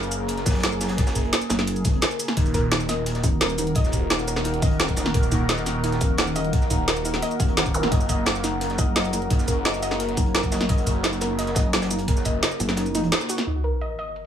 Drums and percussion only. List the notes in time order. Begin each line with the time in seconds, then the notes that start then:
0.03 shaker
0.12 closed hi-hat, shaker
0.28 closed hi-hat
0.37 snare, closed hi-hat
0.46 kick, snare, closed hi-hat, shaker
0.50 snare, closed hi-hat
0.55 snare, closed hi-hat
0.59 snare, closed hi-hat
0.63 snare, closed hi-hat
0.72 shaker
0.81 snare, closed hi-hat, shaker
0.88 snare, closed hi-hat
0.98 kick, snare, closed hi-hat
1.07 snare, closed hi-hat, shaker
1.15 kick, closed hi-hat, shaker
1.25 closed hi-hat
1.33 snare, closed hi-hat
1.41 closed hi-hat, shaker
1.49 snare, closed hi-hat, shaker
1.59 snare
1.67 closed hi-hat
1.76 closed hi-hat, shaker
1.84 kick, closed hi-hat, shaker
1.93 closed hi-hat
2.02 snare, closed hi-hat
2.11 shaker
2.20 closed hi-hat, shaker
2.28 snare, closed hi-hat
2.37 kick, closed hi-hat
2.46 closed hi-hat, shaker
2.54 kick, closed hi-hat, shaker
2.72 snare, closed hi-hat
2.80 shaker
2.89 snare, closed hi-hat, shaker
3.06 closed hi-hat
3.15 snare, closed hi-hat
3.24 kick, closed hi-hat, shaker
3.41 snare, closed hi-hat
3.50 shaker
3.58 closed hi-hat, shaker
3.67 closed hi-hat
3.75 kick, closed hi-hat
3.84 snare, shaker
3.92 kick, closed hi-hat, shaker
4.10 snare, closed hi-hat
4.19 shaker
4.28 closed hi-hat, shaker
4.36 snare, closed hi-hat
4.44 closed hi-hat
4.54 closed hi-hat
4.62 kick, closed hi-hat, shaker
4.71 closed hi-hat
4.79 snare, closed hi-hat
4.88 kick, shaker
4.96 snare, closed hi-hat, shaker
5.06 snare, closed hi-hat
5.14 kick, closed hi-hat
5.23 closed hi-hat, shaker
5.32 kick, closed hi-hat, shaker
5.49 snare, closed hi-hat
5.58 shaker
5.66 snare, closed hi-hat, shaker
5.84 closed hi-hat
5.92 snare, closed hi-hat
6.01 kick, closed hi-hat, shaker
6.18 snare, closed hi-hat
6.27 shaker
6.36 closed hi-hat, shaker
6.44 closed hi-hat
6.53 kick, closed hi-hat
6.61 snare, shaker
6.70 kick, closed hi-hat, shaker
6.88 snare, closed hi-hat
6.96 closed hi-hat, shaker
7.05 closed hi-hat, shaker
7.14 snare, closed hi-hat
7.22 closed hi-hat
7.31 closed hi-hat, shaker
7.39 kick, closed hi-hat, shaker
7.48 closed hi-hat
7.57 snare, closed hi-hat
7.66 kick, shaker
7.74 closed hi-hat, shaker
7.83 snare, closed hi-hat
7.92 kick, closed hi-hat
8.01 shaker
8.09 kick, closed hi-hat, shaker
8.26 snare, closed hi-hat
8.35 shaker
8.44 snare, closed hi-hat, shaker
8.61 closed hi-hat
8.70 snare, closed hi-hat
8.78 kick, closed hi-hat, shaker
8.96 snare, closed hi-hat
9.05 shaker
9.13 closed hi-hat, shaker
9.22 closed hi-hat
9.30 kick, closed hi-hat
9.38 snare, shaker
9.48 kick, closed hi-hat, shaker
9.65 snare, closed hi-hat
9.74 shaker
9.82 closed hi-hat, shaker
9.91 snare
10.00 closed hi-hat
10.09 closed hi-hat
10.17 kick, closed hi-hat, shaker
10.26 closed hi-hat
10.35 snare, closed hi-hat
10.43 kick, shaker
10.52 snare, closed hi-hat, shaker
10.61 snare, closed hi-hat
10.69 kick, closed hi-hat
10.78 closed hi-hat, shaker
10.87 kick, closed hi-hat, shaker
11.03 snare, closed hi-hat
11.13 shaker
11.21 snare, closed hi-hat, shaker
11.39 closed hi-hat
11.47 snare, closed hi-hat
11.55 kick, snare, closed hi-hat, shaker
11.73 snare, closed hi-hat
11.82 snare, closed hi-hat, shaker
11.91 closed hi-hat, shaker
11.98 closed hi-hat
12.08 kick, closed hi-hat
12.17 snare, shaker
12.25 kick, closed hi-hat, shaker
12.43 snare, closed hi-hat
12.51 closed hi-hat, shaker
12.60 closed hi-hat, shaker
12.68 snare
12.77 snare, closed hi-hat
12.86 closed hi-hat, shaker
12.95 closed hi-hat, shaker
13.04 closed hi-hat
13.12 snare, closed hi-hat
13.21 shaker
13.29 closed hi-hat, shaker
13.38 snare, closed hi-hat
13.47 closed hi-hat
13.64 closed hi-hat
13.81 closed hi-hat
13.99 closed hi-hat
14.16 closed hi-hat